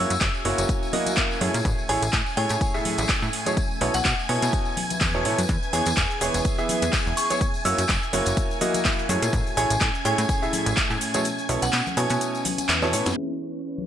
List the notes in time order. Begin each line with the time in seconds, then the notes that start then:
Already playing: A#3 C#4 E4 F#4 G#4 C#5 E5 G#5 E6 G#6
0.10 F#2, closed hi-hat, tambourine
0.21 F#1, kick, clap, closed hi-hat, tambourine
0.34 tambourine
0.45 F#1 A#3 E4 F#4 C#5, open hi-hat
0.58 F#1 A#4, closed hi-hat, tambourine
0.69 kick, closed hi-hat, tambourine
0.83 tambourine
0.93 A#3 E4 F#4 D#5, open hi-hat, high conga
1.06 closed hi-hat, tambourine, high conga
1.16 A#3 E4 F#4 E5, kick, clap, closed hi-hat, tambourine
1.31 tambourine
1.41 F#2 A2 A3 E4 G#4 C#5, open hi-hat
1.54 A#2, closed hi-hat, tambourine
1.65 A1, kick, closed hi-hat, tambourine
1.79 tambourine
1.89 A1 A2 A3 E4 G#4 C#5 G#5, open hi-hat
2.02 A1, closed hi-hat, tambourine
2.09 A2 A3, kick, clap, closed hi-hat, tambourine
2.26 tambourine
2.37 A2 A3 E4 G#4 C#5 G#5, open hi-hat
2.49 A2, closed hi-hat, tambourine
2.61 kick, closed hi-hat, tambourine
2.74 A2 A3 E4 G#4 E5, tambourine
2.85 open hi-hat, high conga
2.98 A1, closed hi-hat, tambourine
3.08 kick, clap, closed hi-hat, tambourine
3.22 A2, tambourine
3.33 open hi-hat
3.46 B2 A3 E4 G#4 C#5, closed hi-hat, tambourine, high conga
3.57 kick, closed hi-hat, tambourine
3.71 tambourine
3.81 B1 B2 B3 E4 A4 C#5, open hi-hat
3.94 B1 F#5, closed hi-hat, tambourine
4.05 B2, kick, clap, closed hi-hat, tambourine
4.19 tambourine
4.29 B2 B3 E4 A4 C#5 G#5, open hi-hat
4.39 B2 B4, closed hi-hat, tambourine
4.53 kick, closed hi-hat, tambourine
4.65 tambourine
4.77 open hi-hat, high conga
4.90 closed hi-hat, tambourine, high conga
5.00 E2, kick, clap, closed hi-hat, tambourine
5.14 B2 B3 E4 A4 C#5, tambourine
5.25 A2 E3 B3 E4 A4 C#5, open hi-hat
5.38 F#2, closed hi-hat, tambourine
5.49 E2, kick, closed hi-hat, tambourine, shaker
5.63 G#4, tambourine, shaker
5.73 E2 E3 B3 E4 G#4 C#5 G#5, open hi-hat, shaker
5.86 E2, closed hi-hat, tambourine, shaker
5.97 E1, kick, clap, closed hi-hat, tambourine, shaker
6.10 tambourine, shaker
6.21 E1 E3 B3 E4 G#4 C#5, open hi-hat, shaker
6.34 E1, closed hi-hat, tambourine, shaker
6.45 kick, closed hi-hat, tambourine, shaker
6.58 E3 B3 E4 G#4 E5, tambourine, shaker
6.69 open hi-hat, high conga, shaker
6.82 E2, closed hi-hat, tambourine, shaker
6.93 kick, clap, closed hi-hat, tambourine, shaker
7.06 E1, tambourine, shaker
7.17 C#6, open hi-hat, shaker
7.30 B3 E4 G#4 C#5, closed hi-hat, tambourine, high conga, shaker
7.41 kick, closed hi-hat, tambourine, shaker
7.54 tambourine, shaker
7.65 F#2 A#3 E4 F#4 C#5 E6, open hi-hat, shaker
7.78 F#2, closed hi-hat, tambourine, shaker
7.83 A#4
7.89 F#1, kick, clap, closed hi-hat, tambourine, shaker
8.02 tambourine, shaker
8.11 F#1 A#3 E4 F#4 C#5, open hi-hat, shaker
8.26 F#1, closed hi-hat, tambourine, shaker
8.37 kick, closed hi-hat, tambourine, shaker
8.51 tambourine, shaker
8.61 A#3 E4 F#4 D#5, open hi-hat, high conga, shaker
8.74 closed hi-hat, tambourine, high conga, shaker
8.85 A#3 E4 F#4 E5, kick, clap, closed hi-hat, tambourine, shaker
8.99 tambourine, shaker
9.09 F#2 A2 A3 E4 G#4 C#5, open hi-hat, shaker
9.22 A#2, closed hi-hat, tambourine, shaker
9.33 A1 C#4, kick, closed hi-hat, tambourine, shaker
9.47 tambourine, shaker
9.57 A1 A2 A3 E4 G#4 C#5 G#5, open hi-hat, shaker
9.70 A1, closed hi-hat, tambourine, shaker
9.78 A2 A3, kick, clap, closed hi-hat, tambourine, shaker
9.95 tambourine, shaker
10.05 A2 A3 E4 G#4 C#5 G#5, open hi-hat, shaker
10.18 A2, closed hi-hat, tambourine, shaker
10.29 kick, closed hi-hat, tambourine, shaker
10.42 A2 A3 E4 G#4 E5, tambourine, shaker
10.53 open hi-hat, high conga, shaker
10.66 A1, closed hi-hat, tambourine, shaker
10.77 kick, clap, closed hi-hat, tambourine, shaker
10.90 A2, tambourine, shaker
11.01 open hi-hat, shaker
11.14 B2 A3 E4 G#4 C#5, closed hi-hat, tambourine, high conga, shaker
11.25 closed hi-hat, tambourine, shaker
11.38 tambourine, shaker
11.49 B1 B2 B3 E4 A4 C#5, open hi-hat, shaker
11.62 B1 F#5, closed hi-hat, tambourine, shaker
11.73 B2, clap, closed hi-hat, tambourine, shaker
11.86 tambourine, high conga, shaker
11.97 B2 B3 E4 A4 C#5 G#5, open hi-hat, shaker
12.10 B2 B4, closed hi-hat, tambourine, shaker
12.21 closed hi-hat, tambourine, shaker
12.35 tambourine, shaker
12.45 open hi-hat, high conga, shaker
12.58 closed hi-hat, tambourine, high conga, shaker
12.69 E2, clap, closed hi-hat, tambourine, shaker
12.82 B2 B3 E4 A4 C#5, snare, tambourine, shaker
12.93 A2 E3 B3 E4 A4 C#5, open hi-hat, shaker
13.06 F#2, snare, closed hi-hat, tambourine, shaker
13.17 E3 C#4 G#4 B4 C#5 E5 C#6
13.38 G#4
13.78 tambourine, high conga